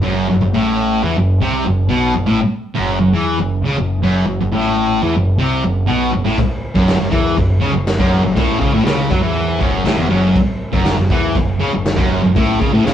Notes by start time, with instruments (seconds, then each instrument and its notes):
0.02 distorted electric guitar F#2
0.06 picked electric bass F#1
0.28 distorted electric guitar F#2
0.33 picked electric bass F#1
0.40 distorted electric guitar F#2
0.45 picked electric bass F#1
0.54 picked electric bass A1, distorted electric guitar A2
1.04 picked electric bass E2, distorted electric guitar E3
1.17 picked electric bass F#1, distorted electric guitar F#2
1.41 picked electric bass C2, distorted electric guitar C3
1.65 picked electric bass F#1, distorted electric guitar F#2
1.89 picked electric bass B1, distorted electric guitar B2
2.14 picked electric bass F#1, distorted electric guitar F#2
2.26 distorted electric guitar A2
2.30 picked electric bass A1
2.75 picked electric bass F#1, distorted electric guitar F#2
3.00 picked electric bass F#1, distorted electric guitar F#2
3.13 picked electric bass E2, distorted electric guitar E3
3.38 picked electric bass F#1, distorted electric guitar F#2
3.62 picked electric bass C#2, distorted electric guitar C#3
3.77 picked electric bass F#1, distorted electric guitar F#2
4.01 picked electric bass F#1, distorted electric guitar F#2
4.27 picked electric bass F#1, distorted electric guitar F#2
4.41 picked electric bass F#1, distorted electric guitar F#2
4.52 picked electric bass A1, distorted electric guitar A2
5.03 picked electric bass E2, distorted electric guitar E3
5.15 picked electric bass F#1, distorted electric guitar F#2
5.39 picked electric bass C2, distorted electric guitar C3
5.64 picked electric bass F#1, distorted electric guitar F#2
5.87 picked electric bass B1, distorted electric guitar B2
6.13 picked electric bass F#1, distorted electric guitar F#2
6.25 picked electric bass A1, distorted electric guitar A2
6.38 kick, crash
6.75 picked electric bass F#1, distorted electric guitar F#2, kick
6.88 snare, clap, crash
6.99 picked electric bass F#1, distorted electric guitar F#2
7.11 picked electric bass E2, distorted electric guitar E3, kick
7.37 picked electric bass F#1, distorted electric guitar F#2, kick, crash
7.61 distorted electric guitar C#3
7.65 picked electric bass C#2
7.73 picked electric bass F#1, distorted electric guitar F#2
7.87 snare, clap, crash
7.99 picked electric bass F#1, distorted electric guitar F#2, kick
8.24 picked electric bass F#1, distorted electric guitar F#2
8.36 picked electric bass A1, distorted electric guitar A2, kick, crash
8.61 picked electric bass C#2, distorted electric guitar C#3, kick
8.74 picked electric bass A1, distorted electric guitar A2
8.85 picked electric bass C#2, distorted electric guitar C#3, snare, clap, crash
9.11 picked electric bass F#2, distorted electric guitar F#3, kick
9.22 picked electric bass E2, distorted electric guitar E3
9.37 crash
9.60 picked electric bass F#1, distorted electric guitar F#2, kick
9.85 picked electric bass A1, distorted electric guitar A2, snare, clap, crash
9.97 picked electric bass E1, distorted electric guitar E2
10.09 picked electric bass F#1, distorted electric guitar F#2
10.36 kick, crash
10.73 picked electric bass F#1, distorted electric guitar F#2, kick
10.85 snare, clap, crash
10.98 picked electric bass F#1, distorted electric guitar F#2
11.10 picked electric bass E2, distorted electric guitar E3, kick
11.35 picked electric bass F#1, distorted electric guitar F#2, kick, crash
11.60 picked electric bass C#2, distorted electric guitar C#3
11.73 picked electric bass F#1, distorted electric guitar F#2
11.86 snare, clap, crash
11.96 picked electric bass F#1, distorted electric guitar F#2, kick
12.23 picked electric bass F#1, distorted electric guitar F#2
12.35 picked electric bass A1, distorted electric guitar A2, kick, crash
12.60 picked electric bass C#2, distorted electric guitar C#3, kick
12.73 picked electric bass A1, distorted electric guitar A2
12.86 picked electric bass C#2, distorted electric guitar C#3, snare, clap, crash